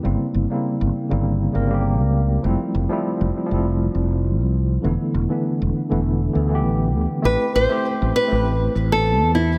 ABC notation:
X:1
M:4/4
L:1/16
Q:"Swing 16ths" 1/4=100
K:Am
V:1 name="Nylon-string guitar"
z16 | z16 | z16 | B2 c4 B4- B A3 E2 |]
V:2 name="Tine electric piano"
[_D,G,_B,CE]3 [D,G,B,CE]4 [D,G,B,CE] z2 [D,G,B,C_B] [D,G,B,CG]4- [D,G,B,CG] | [F,G,A,CE]3 [F,G,A,CE]4 [F,G,A,CE]8- [F,G,A,CE] | [D,E,A,B,E]3 [D,E,A,B,D]4 [D,E,A,B,E] z2 [D,E,A,B,A] [D,E,A,B,G]4- [D,E,A,B,G] | [A,CEGB]3 [A,CEGc]4 [A,CEGB]8- [A,CEGB] |]
V:3 name="Fretless electric bass" clef=bass
G,,, z G,,, z2 G,,, z G,,,2 z G,,,3 _D,,2 z | F,,, z F,,, z2 F,,, z F,,,2 z F,,,3 C,,2 z | E,,, z E,,, z2 E,,, z E,,,2 z D,,2 A,,,2 D,, z | A,,, z A,,, z2 A,,, z A,,,2 z A,,,3 E,,2 z |]